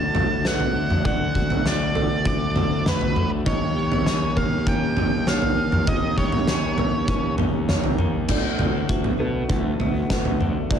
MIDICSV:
0, 0, Header, 1, 7, 480
1, 0, Start_track
1, 0, Tempo, 603622
1, 835, Time_signature, 4, 2, 24, 8
1, 8581, End_track
2, 0, Start_track
2, 0, Title_t, "Lead electric guitar"
2, 0, Program_c, 0, 29
2, 0, Note_on_c, 0, 81, 87
2, 375, Note_off_c, 0, 81, 0
2, 378, Note_on_c, 0, 78, 70
2, 814, Note_off_c, 0, 78, 0
2, 843, Note_on_c, 0, 78, 83
2, 1328, Note_on_c, 0, 74, 69
2, 1333, Note_off_c, 0, 78, 0
2, 1798, Note_off_c, 0, 74, 0
2, 1807, Note_on_c, 0, 74, 75
2, 2290, Note_on_c, 0, 71, 71
2, 2294, Note_off_c, 0, 74, 0
2, 2617, Note_off_c, 0, 71, 0
2, 2759, Note_on_c, 0, 73, 76
2, 3477, Note_on_c, 0, 77, 79
2, 3497, Note_off_c, 0, 73, 0
2, 3722, Note_off_c, 0, 77, 0
2, 3725, Note_on_c, 0, 79, 83
2, 4198, Note_off_c, 0, 79, 0
2, 4201, Note_on_c, 0, 77, 66
2, 4676, Note_on_c, 0, 75, 74
2, 4691, Note_off_c, 0, 77, 0
2, 4910, Note_off_c, 0, 75, 0
2, 4914, Note_on_c, 0, 73, 66
2, 5841, Note_off_c, 0, 73, 0
2, 8581, End_track
3, 0, Start_track
3, 0, Title_t, "Felt piano"
3, 0, Program_c, 1, 0
3, 0, Note_on_c, 1, 69, 62
3, 117, Note_off_c, 1, 69, 0
3, 357, Note_on_c, 1, 71, 60
3, 833, Note_on_c, 1, 74, 67
3, 835, Note_off_c, 1, 71, 0
3, 1313, Note_off_c, 1, 74, 0
3, 1554, Note_on_c, 1, 69, 62
3, 2034, Note_off_c, 1, 69, 0
3, 2273, Note_on_c, 1, 71, 65
3, 2751, Note_on_c, 1, 75, 76
3, 2753, Note_off_c, 1, 71, 0
3, 3232, Note_off_c, 1, 75, 0
3, 3472, Note_on_c, 1, 70, 61
3, 3952, Note_off_c, 1, 70, 0
3, 4190, Note_on_c, 1, 73, 69
3, 4671, Note_off_c, 1, 73, 0
3, 4671, Note_on_c, 1, 75, 71
3, 5152, Note_off_c, 1, 75, 0
3, 5393, Note_on_c, 1, 70, 67
3, 5873, Note_off_c, 1, 70, 0
3, 6113, Note_on_c, 1, 73, 71
3, 6591, Note_on_c, 1, 74, 70
3, 6593, Note_off_c, 1, 73, 0
3, 7072, Note_off_c, 1, 74, 0
3, 7313, Note_on_c, 1, 69, 63
3, 7794, Note_off_c, 1, 69, 0
3, 8033, Note_on_c, 1, 71, 56
3, 8512, Note_on_c, 1, 74, 78
3, 8513, Note_off_c, 1, 71, 0
3, 8581, Note_off_c, 1, 74, 0
3, 8581, End_track
4, 0, Start_track
4, 0, Title_t, "Harmonium"
4, 0, Program_c, 2, 20
4, 0, Note_on_c, 2, 50, 66
4, 0, Note_on_c, 2, 57, 58
4, 0, Note_on_c, 2, 66, 67
4, 2717, Note_off_c, 2, 57, 0
4, 2718, Note_off_c, 2, 66, 0
4, 2719, Note_off_c, 2, 50, 0
4, 2750, Note_on_c, 2, 58, 61
4, 2751, Note_on_c, 2, 51, 67
4, 2752, Note_on_c, 2, 67, 80
4, 6560, Note_off_c, 2, 51, 0
4, 6560, Note_off_c, 2, 58, 0
4, 6561, Note_off_c, 2, 67, 0
4, 6594, Note_on_c, 2, 57, 54
4, 6595, Note_on_c, 2, 59, 57
4, 6595, Note_on_c, 2, 66, 70
4, 6598, Note_on_c, 2, 50, 59
4, 8581, Note_off_c, 2, 50, 0
4, 8581, Note_off_c, 2, 57, 0
4, 8581, Note_off_c, 2, 59, 0
4, 8581, Note_off_c, 2, 66, 0
4, 8581, End_track
5, 0, Start_track
5, 0, Title_t, "Clean electric guitar"
5, 0, Program_c, 3, 27
5, 0, Note_on_c, 3, 50, 59
5, 0, Note_on_c, 3, 57, 56
5, 0, Note_on_c, 3, 61, 58
5, 0, Note_on_c, 3, 66, 49
5, 106, Note_off_c, 3, 50, 0
5, 116, Note_on_c, 3, 50, 60
5, 345, Note_off_c, 3, 57, 0
5, 354, Note_on_c, 3, 57, 56
5, 356, Note_off_c, 3, 66, 0
5, 584, Note_off_c, 3, 50, 0
5, 594, Note_on_c, 3, 50, 56
5, 618, Note_off_c, 3, 61, 0
5, 823, Note_off_c, 3, 50, 0
5, 832, Note_on_c, 3, 50, 60
5, 1074, Note_on_c, 3, 66, 53
5, 1540, Note_off_c, 3, 57, 0
5, 1549, Note_on_c, 3, 57, 55
5, 2020, Note_off_c, 3, 50, 0
5, 2030, Note_on_c, 3, 50, 58
5, 2262, Note_off_c, 3, 57, 0
5, 2272, Note_on_c, 3, 57, 60
5, 2273, Note_off_c, 3, 66, 0
5, 2501, Note_off_c, 3, 50, 0
5, 2510, Note_on_c, 3, 50, 55
5, 2746, Note_off_c, 3, 50, 0
5, 2749, Note_on_c, 3, 51, 64
5, 2752, Note_off_c, 3, 57, 0
5, 2991, Note_on_c, 3, 67, 58
5, 3231, Note_on_c, 3, 61, 65
5, 3468, Note_on_c, 3, 58, 63
5, 3697, Note_off_c, 3, 61, 0
5, 3706, Note_on_c, 3, 61, 61
5, 3938, Note_off_c, 3, 51, 0
5, 3948, Note_on_c, 3, 51, 66
5, 4180, Note_off_c, 3, 58, 0
5, 4189, Note_on_c, 3, 58, 65
5, 4192, Note_off_c, 3, 67, 0
5, 4421, Note_off_c, 3, 51, 0
5, 4431, Note_on_c, 3, 51, 60
5, 4659, Note_off_c, 3, 51, 0
5, 4669, Note_on_c, 3, 51, 70
5, 4909, Note_off_c, 3, 61, 0
5, 4910, Note_on_c, 3, 67, 62
5, 5150, Note_on_c, 3, 61, 64
5, 5383, Note_off_c, 3, 58, 0
5, 5393, Note_on_c, 3, 58, 53
5, 5620, Note_off_c, 3, 61, 0
5, 5630, Note_on_c, 3, 61, 63
5, 5861, Note_off_c, 3, 51, 0
5, 5871, Note_on_c, 3, 51, 68
5, 6103, Note_off_c, 3, 58, 0
5, 6111, Note_off_c, 3, 67, 0
5, 6113, Note_on_c, 3, 58, 63
5, 6340, Note_off_c, 3, 51, 0
5, 6350, Note_on_c, 3, 51, 65
5, 6591, Note_off_c, 3, 51, 0
5, 6592, Note_off_c, 3, 61, 0
5, 6593, Note_off_c, 3, 58, 0
5, 6595, Note_on_c, 3, 50, 57
5, 7069, Note_on_c, 3, 66, 60
5, 7307, Note_on_c, 3, 59, 54
5, 7548, Note_on_c, 3, 57, 57
5, 7788, Note_off_c, 3, 59, 0
5, 7791, Note_on_c, 3, 59, 57
5, 7794, Note_off_c, 3, 50, 0
5, 8030, Note_off_c, 3, 57, 0
5, 8033, Note_on_c, 3, 57, 56
5, 8270, Note_on_c, 3, 50, 60
5, 8501, Note_off_c, 3, 50, 0
5, 8510, Note_on_c, 3, 50, 57
5, 8581, Note_off_c, 3, 50, 0
5, 8581, Note_off_c, 3, 57, 0
5, 8581, Note_off_c, 3, 59, 0
5, 8581, Note_off_c, 3, 66, 0
5, 8581, End_track
6, 0, Start_track
6, 0, Title_t, "Picked electric bass"
6, 0, Program_c, 4, 34
6, 0, Note_on_c, 4, 38, 60
6, 803, Note_off_c, 4, 38, 0
6, 837, Note_on_c, 4, 38, 58
6, 2722, Note_off_c, 4, 38, 0
6, 2754, Note_on_c, 4, 39, 63
6, 4641, Note_off_c, 4, 39, 0
6, 4673, Note_on_c, 4, 39, 65
6, 6591, Note_off_c, 4, 39, 0
6, 6591, Note_on_c, 4, 38, 72
6, 6764, Note_off_c, 4, 38, 0
6, 6832, Note_on_c, 4, 38, 63
6, 7005, Note_off_c, 4, 38, 0
6, 7070, Note_on_c, 4, 38, 73
6, 7244, Note_off_c, 4, 38, 0
6, 7313, Note_on_c, 4, 47, 69
6, 7486, Note_off_c, 4, 47, 0
6, 7552, Note_on_c, 4, 38, 75
6, 7725, Note_off_c, 4, 38, 0
6, 7789, Note_on_c, 4, 38, 72
6, 7963, Note_off_c, 4, 38, 0
6, 8033, Note_on_c, 4, 38, 62
6, 8378, Note_off_c, 4, 38, 0
6, 8514, Note_on_c, 4, 38, 69
6, 8581, Note_off_c, 4, 38, 0
6, 8581, End_track
7, 0, Start_track
7, 0, Title_t, "Drums"
7, 117, Note_on_c, 9, 43, 65
7, 117, Note_on_c, 9, 47, 59
7, 196, Note_off_c, 9, 43, 0
7, 196, Note_off_c, 9, 47, 0
7, 358, Note_on_c, 9, 38, 65
7, 438, Note_off_c, 9, 38, 0
7, 477, Note_on_c, 9, 43, 64
7, 557, Note_off_c, 9, 43, 0
7, 718, Note_on_c, 9, 47, 68
7, 798, Note_off_c, 9, 47, 0
7, 836, Note_on_c, 9, 36, 81
7, 837, Note_on_c, 9, 43, 69
7, 916, Note_off_c, 9, 36, 0
7, 917, Note_off_c, 9, 43, 0
7, 1075, Note_on_c, 9, 36, 56
7, 1155, Note_off_c, 9, 36, 0
7, 1195, Note_on_c, 9, 43, 70
7, 1275, Note_off_c, 9, 43, 0
7, 1317, Note_on_c, 9, 38, 66
7, 1396, Note_off_c, 9, 38, 0
7, 1553, Note_on_c, 9, 43, 66
7, 1633, Note_off_c, 9, 43, 0
7, 1793, Note_on_c, 9, 36, 80
7, 1872, Note_off_c, 9, 36, 0
7, 2033, Note_on_c, 9, 43, 61
7, 2033, Note_on_c, 9, 47, 56
7, 2113, Note_off_c, 9, 43, 0
7, 2113, Note_off_c, 9, 47, 0
7, 2276, Note_on_c, 9, 38, 64
7, 2276, Note_on_c, 9, 47, 68
7, 2355, Note_off_c, 9, 38, 0
7, 2355, Note_off_c, 9, 47, 0
7, 2395, Note_on_c, 9, 43, 70
7, 2474, Note_off_c, 9, 43, 0
7, 2515, Note_on_c, 9, 47, 66
7, 2594, Note_off_c, 9, 47, 0
7, 2753, Note_on_c, 9, 36, 85
7, 2753, Note_on_c, 9, 43, 73
7, 2833, Note_off_c, 9, 36, 0
7, 2833, Note_off_c, 9, 43, 0
7, 3114, Note_on_c, 9, 43, 73
7, 3194, Note_off_c, 9, 43, 0
7, 3232, Note_on_c, 9, 38, 72
7, 3311, Note_off_c, 9, 38, 0
7, 3473, Note_on_c, 9, 36, 51
7, 3475, Note_on_c, 9, 43, 58
7, 3552, Note_off_c, 9, 36, 0
7, 3554, Note_off_c, 9, 43, 0
7, 3712, Note_on_c, 9, 36, 85
7, 3791, Note_off_c, 9, 36, 0
7, 3950, Note_on_c, 9, 43, 63
7, 3950, Note_on_c, 9, 47, 57
7, 4029, Note_off_c, 9, 43, 0
7, 4029, Note_off_c, 9, 47, 0
7, 4191, Note_on_c, 9, 38, 62
7, 4270, Note_off_c, 9, 38, 0
7, 4309, Note_on_c, 9, 43, 65
7, 4389, Note_off_c, 9, 43, 0
7, 4550, Note_on_c, 9, 47, 70
7, 4630, Note_off_c, 9, 47, 0
7, 4669, Note_on_c, 9, 43, 72
7, 4671, Note_on_c, 9, 36, 99
7, 4749, Note_off_c, 9, 43, 0
7, 4751, Note_off_c, 9, 36, 0
7, 4911, Note_on_c, 9, 36, 55
7, 4991, Note_off_c, 9, 36, 0
7, 5029, Note_on_c, 9, 43, 70
7, 5108, Note_off_c, 9, 43, 0
7, 5149, Note_on_c, 9, 38, 74
7, 5229, Note_off_c, 9, 38, 0
7, 5389, Note_on_c, 9, 43, 66
7, 5469, Note_off_c, 9, 43, 0
7, 5630, Note_on_c, 9, 36, 86
7, 5710, Note_off_c, 9, 36, 0
7, 5869, Note_on_c, 9, 43, 66
7, 5869, Note_on_c, 9, 47, 63
7, 5948, Note_off_c, 9, 43, 0
7, 5948, Note_off_c, 9, 47, 0
7, 6113, Note_on_c, 9, 38, 64
7, 6113, Note_on_c, 9, 47, 66
7, 6192, Note_off_c, 9, 38, 0
7, 6192, Note_off_c, 9, 47, 0
7, 6231, Note_on_c, 9, 43, 74
7, 6311, Note_off_c, 9, 43, 0
7, 6350, Note_on_c, 9, 47, 70
7, 6429, Note_off_c, 9, 47, 0
7, 6588, Note_on_c, 9, 43, 70
7, 6588, Note_on_c, 9, 49, 82
7, 6591, Note_on_c, 9, 36, 92
7, 6668, Note_off_c, 9, 43, 0
7, 6668, Note_off_c, 9, 49, 0
7, 6670, Note_off_c, 9, 36, 0
7, 6830, Note_on_c, 9, 43, 65
7, 6830, Note_on_c, 9, 47, 56
7, 6909, Note_off_c, 9, 43, 0
7, 6909, Note_off_c, 9, 47, 0
7, 7071, Note_on_c, 9, 36, 91
7, 7151, Note_off_c, 9, 36, 0
7, 7191, Note_on_c, 9, 43, 67
7, 7271, Note_off_c, 9, 43, 0
7, 7549, Note_on_c, 9, 43, 67
7, 7551, Note_on_c, 9, 36, 83
7, 7629, Note_off_c, 9, 43, 0
7, 7630, Note_off_c, 9, 36, 0
7, 7791, Note_on_c, 9, 43, 69
7, 7871, Note_off_c, 9, 43, 0
7, 8032, Note_on_c, 9, 36, 91
7, 8032, Note_on_c, 9, 38, 69
7, 8111, Note_off_c, 9, 38, 0
7, 8112, Note_off_c, 9, 36, 0
7, 8152, Note_on_c, 9, 43, 70
7, 8232, Note_off_c, 9, 43, 0
7, 8274, Note_on_c, 9, 47, 61
7, 8354, Note_off_c, 9, 47, 0
7, 8513, Note_on_c, 9, 36, 90
7, 8515, Note_on_c, 9, 43, 66
7, 8581, Note_off_c, 9, 36, 0
7, 8581, Note_off_c, 9, 43, 0
7, 8581, End_track
0, 0, End_of_file